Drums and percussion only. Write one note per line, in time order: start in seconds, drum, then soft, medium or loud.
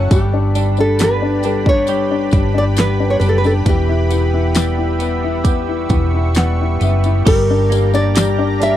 0.11 kick medium
0.11 closed hi-hat medium
0.11 tambourine soft
0.55 closed hi-hat medium
0.55 tambourine soft
0.77 tambourine soft
0.99 snare loud
0.99 closed hi-hat medium
0.99 tambourine medium
1.43 closed hi-hat medium
1.43 tambourine soft
1.66 kick medium
1.87 closed hi-hat medium
1.87 tambourine soft
2.31 kick medium
2.31 closed hi-hat medium
2.31 tambourine soft
2.77 snare medium
2.77 closed hi-hat medium
2.77 tambourine medium
3.21 closed hi-hat medium
3.21 tambourine soft
3.44 tambourine soft
3.66 kick medium
3.66 closed hi-hat medium
3.66 tambourine soft
4.11 closed hi-hat medium
4.11 tambourine soft
4.55 snare medium
4.55 closed hi-hat medium
4.55 tambourine medium
5.00 closed hi-hat medium
5.00 tambourine soft
5.45 kick medium
5.45 closed hi-hat medium
5.45 tambourine soft
5.89 kick medium
5.89 closed hi-hat medium
5.89 tambourine soft
6.35 snare medium
6.35 closed hi-hat medium
6.35 tambourine medium
6.81 closed hi-hat medium
6.81 tambourine soft
7.04 closed hi-hat soft
7.04 tambourine soft
7.26 kick loud
7.26 closed hi-hat medium
7.26 crash medium
7.26 tambourine soft
7.72 closed hi-hat medium
7.72 tambourine medium
7.93 tambourine soft
8.16 snare loud
8.16 closed hi-hat medium
8.16 tambourine medium
8.62 closed hi-hat medium
8.62 tambourine soft